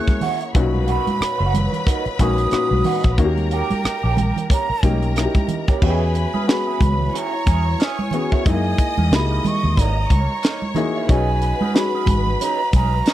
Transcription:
Already playing: A#3 C#4 E4 G#4 C#5 C#6 F#6
0.07 muted clean electric guitar stroke, kick, closed hi-hat, high conga
0.21 A#3 E4 F#4, open hi-hat, muted conga, low conga
0.41 muted clean electric guitar stroke, closed hi-hat
0.55 B1 A#2 C#4 D#4 F#4 B4 B5, kick, closed hi-hat
0.74 high conga
0.87 A#3 D#4 F#4 B5, closed hi-hat, muted conga
1.07 muted fingered electric bass stroke, closed hi-hat, high conga
1.19 C#5, muted clean electric guitar stroke, muted fingered electric bass stroke, cross-stick, closed hi-hat, muted conga
1.39 F#1 A#3 D#4 F#4
1.53 muted clean electric guitar stroke, closed hi-hat, high conga, low conga
1.72 muted clean electric guitar stroke, closed hi-hat, low conga
1.86 A#3 D#4 F#4, kick, closed hi-hat
2.05 muted clean electric guitar stroke, muted fingered electric bass stroke, closed hi-hat
2.19 A#1 A#3 C#4 D#4 F#4 G#4 D#6, kick, cross-stick, closed hi-hat, muted conga, high conga
2.38 muted clean electric guitar stroke, closed hi-hat
2.51 A#2 C#4 D#4 F#4, muted clean electric guitar stroke, muted fingered electric bass stroke, cross-stick, closed hi-hat, muted conga
2.71 B1, muted clean electric guitar stroke, high conga
2.84 A#3 D#4 F#4, open hi-hat, low conga
3.04 A#1, muted clean electric guitar stroke, kick, closed hi-hat
3.18 D#2 A#3 C#4 D#4 F#4 A#4 A#5, kick, closed hi-hat
3.25 G4
3.37 closed hi-hat, high conga
3.51 A#3 C#4 G4, closed hi-hat
3.55 G5
3.70 muted fingered electric bass stroke, closed hi-hat, high conga
3.84 muted clean electric guitar stroke, muted fingered electric bass stroke, cross-stick, closed hi-hat, muted conga
4.03 A#1 A#3 C#4 G4
4.17 muted clean electric guitar stroke, closed hi-hat, muted conga, high conga, low conga
4.36 muted clean electric guitar stroke, closed hi-hat, low conga
4.50 A#3 C#4 G4 A#4 A#5, kick, closed hi-hat, muted conga
4.69 muted clean electric guitar stroke, muted fingered electric bass stroke
4.83 B1 A#3 C#4 D#4 G4 A#4 D#5 G5, kick, closed hi-hat, muted conga, high conga
5.02 muted clean electric guitar stroke, closed hi-hat
5.16 A#3 C#4 D#4 E4, muted clean electric guitar stroke, cross-stick, closed hi-hat, muted conga
5.25 G4
5.35 muted clean electric guitar stroke, kick, closed hi-hat, high conga
5.48 closed hi-hat, muted conga, low conga
5.68 A#3 C#4 G4, kick, closed hi-hat
5.81 E2 B3 C#4 E4 F#4 G4 G#4 B4 G#5 B5, kick, crash, muted conga
5.90 G#4
6.14 E5, muted clean electric guitar stroke, closed hi-hat
6.34 C#4 E4 G#4, high conga
6.40 G#5
6.47 B3 C#4 F#4 G#4, muted clean electric guitar stroke, snare, closed hi-hat
6.51 B5
6.67 C#4 E4 G#4
6.81 C#2 C#5, muted clean electric guitar stroke, kick, closed hi-hat, muted conga, high conga, low conga
6.99 muted clean electric guitar stroke, low conga
7.07 E4
7.13 C#4 E4 G#4 C#5 C#6, closed hi-hat, muted conga
7.18 A#5
7.34 muted clean electric guitar stroke
7.46 E2 C#4 E4 G#4, kick, closed hi-hat, muted conga, high conga
7.66 muted clean electric guitar stroke
7.78 C#4 E4 G#4, snare, closed hi-hat, muted conga
7.84 G#5
7.99 high conga
8.11 B3 C#4 F#4 G#4, muted clean electric guitar stroke, closed hi-hat, muted conga, low conga
8.31 C#4 E4 A#4, kick
8.45 F#2 E3 G#3 A#3 D#4 E4 G#4 D#5 D#6, kick, closed hi-hat, muted conga
8.50 A#3 G#5
8.78 muted clean electric guitar stroke, kick, closed hi-hat
8.97 E2 E3 A#3 D#4, high conga
9.11 C#2 A#3 D#4 E4 G4 B5, snare, closed hi-hat, muted conga
9.20 G#4
9.30 E3 A#3 D#4
9.45 C#6, muted clean electric guitar stroke, closed hi-hat, muted conga, high conga, low conga
9.63 D#2, muted clean electric guitar stroke, low conga
9.77 G#1 E3 A#3 D#4 C#5 A#5, kick, closed hi-hat, muted conga
9.97 muted clean electric guitar stroke
10.10 C#2 E3 A#3 D#4 C#5 C#6, kick, closed hi-hat, muted conga, high conga
10.30 muted clean electric guitar stroke
10.43 E3 A#3 D#4, snare, closed hi-hat
10.62 high conga
10.75 A#3 D#4 E4 G#4, muted clean electric guitar stroke, closed hi-hat, muted conga, low conga
10.96 E3 A#3 E4
11.08 B1 C#4 D#4 F#4 G#4 B4 G#5 B5, kick, closed hi-hat
11.42 muted clean electric guitar stroke, closed hi-hat
11.54 F#5
11.61 C#4 D#4 G#4, high conga
11.74 C#4 D#4 F#4 G#4 B5, snare, closed hi-hat, muted conga
11.95 C#4 D#4 G#4
12.06 G#1, muted clean electric guitar stroke, kick, closed hi-hat, muted conga, high conga, low conga
12.25 muted clean electric guitar stroke, low conga
12.40 C#4 D#4 G#4 A#5, closed hi-hat, muted conga
12.60 muted clean electric guitar stroke
12.73 B1 C#4 D#4 G#4 A#5, kick, closed hi-hat, muted conga, high conga
12.94 muted clean electric guitar stroke
13.06 C#4 D#4 G#4 C#5 C#6, snare, closed hi-hat, muted conga

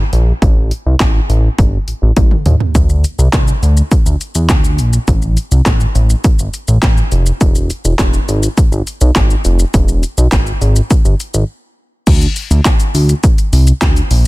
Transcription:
0.13 A#1, closed hi-hat
0.42 A1, kick, closed hi-hat
0.71 closed hi-hat
0.86 C2
1.00 A1, kick, snare, clap, closed hi-hat
1.29 A1, closed hi-hat
1.58 G1, kick, closed hi-hat
1.87 A1, closed hi-hat
2.02 A1
2.16 A1, kick, closed hi-hat, high tom
2.31 mid tom
2.46 D#2, closed hi-hat, mid tom
2.60 floor tom
2.75 D2, kick, closed hi-hat, shaker
2.89 shaker
3.04 closed hi-hat, shaker
3.19 C2, shaker
3.33 C2, kick, snare, clap, closed hi-hat, shaker
3.48 shaker
3.62 D2, closed hi-hat, shaker
3.77 shaker
3.91 kick, closed hi-hat, shaker
4.06 D2, shaker
4.21 closed hi-hat, shaker
4.35 E2, shaker
4.49 D2, kick, snare, clap, closed hi-hat, shaker
4.64 shaker
4.79 A#1, closed hi-hat, shaker
4.93 shaker
5.08 A1, kick, closed hi-hat, shaker
5.22 shaker
5.37 closed hi-hat, shaker
5.51 C2, shaker
5.66 A1, kick, snare, clap, closed hi-hat, shaker
5.80 shaker
5.95 A1, closed hi-hat, shaker
6.10 shaker
6.24 kick, closed hi-hat, shaker
6.39 G1, shaker
6.54 closed hi-hat, shaker
6.68 A1, shaker
6.83 A1, kick, snare, clap, closed hi-hat, shaker
6.97 shaker
7.12 F1, closed hi-hat, shaker
7.26 shaker
7.41 E1, kick, closed hi-hat, shaker
7.55 shaker
7.70 closed hi-hat, shaker
7.85 E1, shaker
7.99 E1, kick, snare, clap, closed hi-hat, shaker
8.13 shaker
8.28 G#1, closed hi-hat, shaker
8.43 shaker
8.58 kick, closed hi-hat, shaker
8.72 G#1, shaker
8.87 closed hi-hat, shaker
9.01 B1, shaker
9.16 G#1, kick, snare, clap, closed hi-hat, shaker
9.30 shaker
9.45 F1, closed hi-hat, shaker
9.59 shaker
9.74 E1, kick, closed hi-hat, shaker
9.88 shaker
10.03 closed hi-hat, shaker
10.18 B1, shaker
10.32 G#1, kick, snare, clap, closed hi-hat, shaker
10.47 shaker
10.61 G#1, closed hi-hat, shaker
10.76 shaker
10.91 kick, closed hi-hat, shaker
11.05 G1, shaker
11.20 closed hi-hat, shaker
11.34 G#1, shaker
12.07 D2, kick, closed hi-hat, crash, shaker
12.21 closed hi-hat, shaker
12.36 open hi-hat, shaker
12.51 D2, closed hi-hat, shaker
12.65 kick, snare, clap, closed hi-hat, shaker
12.80 closed hi-hat, shaker
12.94 D2, open hi-hat, shaker
13.09 closed hi-hat, shaker
13.23 kick, closed hi-hat, shaker
13.38 closed hi-hat, shaker
13.53 C2, open hi-hat, shaker
13.67 closed hi-hat, shaker
13.82 D2, kick, snare, clap, closed hi-hat, shaker
13.96 closed hi-hat, shaker
14.11 A#1, open hi-hat, shaker

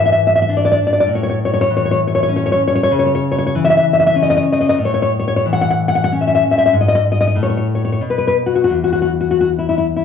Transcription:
Already playing: G#2 E3
0.06 E5
0.12 E5
0.27 E5
0.36 E5
0.42 E5
0.49 D4
0.57 D5
0.65 D5
0.72 D5
0.87 D5
0.93 D5
1.00 D5
1.07 A2
1.15 C#5
1.23 C#5
1.30 C#5
1.45 C#5
1.54 C#5
1.61 C#5
1.70 E3
1.77 C#5
1.85 C#5
1.91 C#5
2.07 C#5
2.15 C#5
2.23 C#5
2.29 C#4
2.36 C#5
2.46 C#5
2.52 C#5
2.68 C#5
2.75 C#5
2.83 C#5
2.92 C#3
2.99 C#5
3.06 C#5
3.15 C#5
3.32 C#5
3.38 C#5
3.47 C#5
3.55 E3
3.65 E5
3.70 E5
3.77 E5
3.93 E5
4.00 E5
4.07 E5
4.16 C#4
4.23 D#5
4.30 D#5
4.37 D#5
4.52 D#5
4.61 D#5
4.69 D#5
4.78 A2
4.85 C#5
4.94 C#5
5.02 C#5
5.19 C#5
5.28 C#5
5.36 C#5
5.46 E3
5.53 F#5
5.61 F#5
5.70 F#5
5.88 F#5
5.95 F#5
6.04 F#5
6.12 C#4
6.21 E5
6.27 E5
6.35 E5
6.51 E5
6.58 E5
6.66 E5
6.73 G#2
6.81 D#5
6.88 D#5
6.95 D#5
7.12 D#5
7.21 D#5
7.27 D#5
7.35 A2
7.43 C#5
7.50 C#5
7.57 C#5
7.75 C#5
7.85 C#5
7.92 C#5
8.01 B2
8.10 B4
8.18 B4
8.28 B4
8.46 F#4
8.55 F#4
8.64 F#4
8.70 E2
8.84 F#4
8.93 F#4
9.02 F#4
9.21 F#4
9.31 F#4
9.41 F#4
9.59 E4
9.69 E4
9.78 E4
9.96 E4

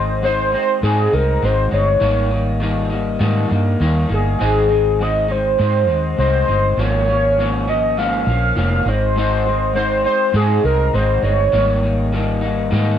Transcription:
Already playing: G#1 G#3 C4 D#4 C5
0.22 G#2 G#3 C4 D#4 C5
0.52 G#3 C4 D#4 C5
0.82 G#2 G#3 C4 D#4 G#4
1.13 C2 G#3 C4 D#4 A#4
1.42 G#1 G#2 G#3 C4 D#4 C5
1.71 G1 G#3 C4 D#4 C#5
2.00 G#1 D#3 G3 A#3 D#4
2.31 G3 A#3 D#4
2.60 D#3 G3 A#3 D#4
2.90 G3 A#3 D#4
3.19 G#2 D#3 G3 A#3 D#4
3.48 G2 G3 A#3 D#4
3.80 D#2 D#3 G3 A#3 D#4
4.09 G1 G3 A#3 D#4
4.14 G#4
4.39 G#1 G#2 G#3 C4 D#4
4.69 G#3 C4 D#4
4.99 G#2 G#3 C4 D#4 D#5
5.28 G#3 C4 D#4 C5
5.59 G#2 G#3 C4 D#4
5.87 D#2 G#3 C4 D#4
6.17 C2 G#2 G#3 C4 D#4 C5
6.48 G1 G#3 C4 D#4
6.77 G#1 G#2 F3 A#3 C#4 C#5
7.08 F3 A#3 C#4
7.38 G#2 F3 A#3 C#4
7.67 F3 A#3 C#4 D#5
7.97 G#2 F3 A#3 C#4 F5
8.26 A#1 F3 A#3 C#4
8.55 F1 G#2 F3 A#3 C#4
8.86 G#1 G#3 C4 D#4 C5
9.16 G#2 G#3 C4 D#4
9.45 G#3 C4 D#4
9.73 G#2 G#3 C4 D#4 C5
10.04 G#3 C4 D#4 C5
10.33 G#2 G#3 C4 D#4 G#4
10.64 C2 G#3 C4 D#4 A#4
10.93 G#1 G#2 G#3 C4 D#4 C5
11.23 G1 G#3 C4 D#4 C#5
11.52 G#1 D#3 G3 A#3 D#4
11.82 G3 A#3 D#4
12.13 D#3 G3 A#3 D#4
12.41 G3 A#3 D#4
12.71 G#2 D#3 G3 A#3 D#4

